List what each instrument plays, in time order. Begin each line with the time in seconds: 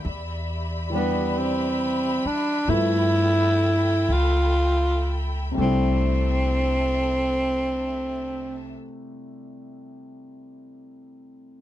0.05 upright bass E2, string section G4 D5 E5 B5
0.90 upright piano E3 G3 B4
0.95 tenor saxophone B3, upright piano D4
1.38 tenor saxophone C4
2.25 tenor saxophone D4, muted upright bass stroke
2.68 upright bass G2, upright piano F3 A3 B3 E5, tenor saxophone E4, string section A4 G5
4.09 upright bass C#2, tenor saxophone F4
5.51 upright piano C3 G3
5.58 upright bass C2, upright piano A3 D4, tenor saxophone C4, string section D4 A4 C5 E5
5.64 upright piano E4